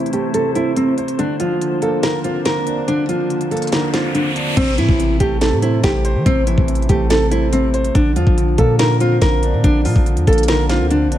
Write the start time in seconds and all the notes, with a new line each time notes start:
Already playing: C3 E3 A3 C4 E4 C5
0.06 closed hi-hat
0.13 A3 G4, closed hi-hat
0.34 C3 A4, closed hi-hat
0.55 C4 E4, closed hi-hat
0.76 C3 C4, closed hi-hat
0.98 C5, closed hi-hat
1.08 closed hi-hat
1.18 D3 A#3 D4, closed hi-hat
1.40 F3 F4, closed hi-hat
1.62 D3, closed hi-hat
1.82 A#3 A4, closed hi-hat
2.03 D3 A#4, snare, closed hi-hat
2.24 C4 F4, closed hi-hat
2.45 D3 A#4, snare, closed hi-hat
2.67 D4, closed hi-hat
2.88 D3 D4, closed hi-hat, riser
3.09 F3 F4, closed hi-hat
3.30 D3, closed hi-hat
3.41 closed hi-hat
3.51 A#3 A4, closed hi-hat
3.57 closed hi-hat
3.62 closed hi-hat
3.67 closed hi-hat
3.72 D3 A#4, snare, closed hi-hat
3.94 C4 F4, snare, closed hi-hat
4.14 D3 D4, closed hi-hat
4.36 D4, closed hi-hat
4.57 A1 C3 C4, kick, closed hi-hat, crash
4.78 A2 E3 E4, closed hi-hat
4.89 A1, kick
4.99 C3, closed hi-hat
5.20 A1 A3 G4, kick, closed hi-hat
5.41 C3 A4, snare, closed hi-hat
5.52 A2
5.62 C4 E4, closed hi-hat
5.83 A1 C3 G4, kick, snare, closed hi-hat
6.05 C5, closed hi-hat
6.15 E3
6.26 A1 C3 C4, kick, closed hi-hat
6.47 E3 E4, closed hi-hat
6.58 A1, kick
6.68 C3, closed hi-hat
6.75 closed hi-hat
6.82 closed hi-hat
6.89 A1 A3 G4, kick, closed hi-hat
7.10 C3 A4, snare, closed hi-hat
7.31 C4 E4, closed hi-hat
7.53 C3 C4, closed hi-hat
7.74 C5, closed hi-hat
7.84 closed hi-hat
7.95 A#1 D3 D4, kick, closed hi-hat
8.16 F2 F3 F4, closed hi-hat
8.27 A#1, kick
8.38 D3, closed hi-hat
8.58 A#2 A#3 A4, kick, closed hi-hat
8.79 D3 A#4, snare, closed hi-hat
9.00 C4 F4, closed hi-hat
9.21 A#1 D3 A#4, kick, snare, closed hi-hat
9.43 D4, closed hi-hat
9.53 A#2
9.64 A#1 D3 D4, kick, closed hi-hat
9.85 A#2 F3 F4, open hi-hat
9.96 A#1, kick
10.06 D3, closed hi-hat
10.17 F2, closed hi-hat
10.27 A#1 A#3 A4, kick, closed hi-hat
10.33 closed hi-hat
10.38 closed hi-hat
10.43 closed hi-hat
10.48 D3 A#4, snare, closed hi-hat
10.69 C4 F4, snare, closed hi-hat
10.80 D2
10.90 D3 D4, closed hi-hat
11.07 A#1
11.12 D4, closed hi-hat